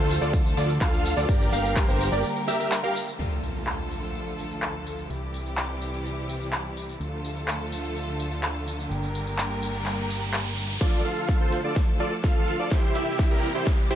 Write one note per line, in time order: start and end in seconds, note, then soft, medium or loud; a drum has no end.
0.00 0.19 D2 loud
0.00 3.15 D3 medium
0.00 1.27 F3 medium
0.00 1.27 A3 medium
0.00 0.18 F4 medium
0.00 1.27 F4 medium
0.00 0.18 A4 medium
0.00 1.27 A4 medium
0.00 0.18 C5 medium
0.00 0.18 C5 loud
0.10 open hi-hat medium
0.10 tambourine medium
0.21 0.55 D2 loud
0.21 0.34 F4 medium
0.21 0.34 A4 medium
0.21 0.34 D5 medium
0.21 tambourine soft
0.33 kick loud
0.33 tambourine soft
0.46 tambourine soft
0.57 0.79 D2 loud
0.57 0.70 F4 loud
0.57 0.70 A4 medium
0.57 0.70 D5 loud
0.57 open hi-hat loud
0.57 tambourine medium
0.70 tambourine soft
0.81 1.14 D2 loud
0.81 1.14 F4 medium
0.81 1.14 A4 medium
0.81 1.14 F5 loud
0.81 kick loud
0.81 clap loud
0.81 tambourine soft
0.94 tambourine soft
1.05 open hi-hat medium
1.05 tambourine medium
1.17 1.26 D2 loud
1.17 1.27 F4 loud
1.17 1.27 A4 medium
1.17 1.27 D5 loud
1.17 tambourine soft
1.29 1.50 G1 medium
1.29 3.17 G3 medium
1.29 3.17 A#3 medium
1.29 1.50 G4 medium
1.29 3.17 G4 medium
1.29 1.50 A#4 medium
1.29 3.17 A#4 medium
1.29 1.50 D5 medium
1.29 kick loud
1.29 tambourine soft
1.41 tambourine soft
1.52 1.86 G1 loud
1.52 1.85 G4 loud
1.52 1.85 A#4 medium
1.52 1.85 F5 loud
1.52 open hi-hat loud
1.52 tambourine medium
1.65 tambourine soft
1.76 kick loud
1.76 clap loud
1.76 tambourine soft
1.88 2.10 G1 loud
1.88 2.08 G4 medium
1.88 2.08 A#4 medium
1.88 2.08 C5 medium
1.88 tambourine soft
2.00 open hi-hat medium
2.00 tambourine medium
2.12 2.24 G1 loud
2.12 2.25 G4 medium
2.12 2.25 A#4 medium
2.12 2.24 D5 medium
2.12 2.25 D5 medium
2.12 tambourine soft
2.25 tambourine soft
2.37 tambourine soft
2.48 2.57 G4 loud
2.48 2.57 A#4 medium
2.48 2.57 E5 loud
2.48 open hi-hat loud
2.48 tambourine medium
2.60 2.72 G4 medium
2.60 2.72 A#4 medium
2.60 2.72 E5 medium
2.60 tambourine soft
2.72 clap loud
2.72 tambourine soft
2.83 2.96 G4 medium
2.83 2.96 A#4 medium
2.83 2.96 F5 medium
2.83 tambourine soft
2.95 open hi-hat medium
2.95 tambourine medium
3.08 tambourine soft
3.19 5.07 D2 medium
3.19 5.08 D3 medium
3.19 5.08 F3 medium
3.19 5.08 A3 medium
3.19 5.08 F4 medium
3.19 5.08 A4 medium
3.19 crash medium
3.19 tambourine soft
3.19 impact medium
3.44 tambourine medium
3.56 tambourine soft
3.67 clap loud
3.67 tambourine soft
3.91 tambourine medium
4.03 tambourine soft
4.15 tambourine soft
4.39 tambourine medium
4.51 tambourine soft
4.62 clap loud
4.62 tambourine soft
4.87 tambourine medium
4.98 tambourine soft
5.10 6.98 C2 medium
5.10 6.98 C3 medium
5.10 6.98 E3 medium
5.10 6.98 G3 medium
5.10 6.98 E4 medium
5.10 6.98 G4 medium
5.10 tambourine soft
5.34 tambourine medium
5.46 tambourine soft
5.57 clap loud
5.57 tambourine soft
5.82 tambourine medium
5.94 tambourine soft
6.05 tambourine soft
6.29 tambourine medium
6.41 tambourine soft
6.52 clap loud
6.52 tambourine soft
6.77 tambourine medium
6.89 tambourine soft
7.00 8.88 D2 medium
7.00 10.77 D3 medium
7.00 8.89 F3 medium
7.00 8.89 A3 medium
7.00 8.89 F4 medium
7.00 8.89 A4 medium
7.00 tambourine soft
7.00 riser medium
7.25 tambourine medium
7.37 tambourine soft
7.48 clap loud
7.48 tambourine soft
7.72 tambourine medium
7.84 tambourine soft
7.96 tambourine soft
8.20 tambourine medium
8.32 tambourine soft
8.43 clap loud
8.43 tambourine soft
8.67 tambourine medium
8.79 tambourine soft
8.90 10.79 G1 medium
8.90 10.79 G3 medium
8.90 10.79 A#3 medium
8.90 10.79 G4 medium
8.90 10.79 A#4 medium
8.90 tambourine soft
9.03 tambourine soft
9.15 tambourine medium
9.27 tambourine soft
9.38 clap loud
9.38 tambourine soft
9.51 tambourine soft
9.63 tambourine medium
9.75 tambourine soft
9.86 clap medium
9.86 tambourine soft
10.10 tambourine medium
10.22 tambourine soft
10.33 clap loud
10.33 tambourine soft
10.46 tambourine soft
10.58 tambourine medium
10.70 tambourine soft
10.81 11.02 D2 loud
10.81 12.70 D3 medium
10.81 12.70 F3 medium
10.81 12.70 A3 medium
10.81 11.02 F4 medium
10.81 12.70 F4 medium
10.81 11.02 A4 medium
10.81 12.70 A4 medium
10.81 11.02 D5 medium
10.81 kick loud
10.81 snare soft
10.81 riser medium
11.05 11.38 D2 medium
11.05 11.38 F4 loud
11.05 11.38 A4 medium
11.05 11.38 F5 loud
11.05 open hi-hat loud
11.29 kick loud
11.29 snare soft
11.41 11.62 D2 medium
11.41 11.61 F4 medium
11.41 11.61 A4 medium
11.41 11.61 C5 medium
11.52 open hi-hat medium
11.64 11.98 D2 loud
11.64 11.77 F4 medium
11.64 11.77 A4 medium
11.64 11.77 D5 medium
11.76 kick loud
11.76 snare medium
12.00 12.22 D2 loud
12.00 12.13 F4 medium
12.00 12.13 A4 medium
12.00 12.13 D5 loud
12.00 open hi-hat loud
12.24 12.57 D2 medium
12.24 12.57 F4 medium
12.24 12.57 A4 medium
12.24 12.57 F5 medium
12.24 kick loud
12.24 snare medium
12.48 open hi-hat medium
12.60 12.69 D2 medium
12.60 12.70 F4 medium
12.60 12.70 A4 medium
12.60 12.70 D5 loud
12.71 12.93 C2 loud
12.71 13.95 C3 medium
12.71 13.95 E3 medium
12.71 13.95 G3 medium
12.71 13.95 E4 medium
12.71 12.92 E4 medium
12.71 13.95 G4 medium
12.71 12.92 G4 medium
12.71 12.92 C5 medium
12.71 kick loud
12.71 snare medium
12.95 13.29 C2 medium
12.95 13.28 E4 loud
12.95 13.28 G4 medium
12.95 13.28 E5 loud
12.95 open hi-hat loud
13.19 kick loud
13.19 snare medium
13.31 13.53 C2 loud
13.31 13.51 E4 medium
13.31 13.51 G4 medium
13.31 13.51 A#4 medium
13.43 open hi-hat loud
13.55 13.88 C2 loud
13.55 13.67 E4 medium
13.55 13.67 G4 medium
13.55 13.67 C5 medium
13.67 kick loud
13.67 snare medium
13.90 13.95 C2 medium
13.90 13.95 E4 loud
13.90 13.95 G4 medium
13.90 13.95 C5 loud
13.90 open hi-hat loud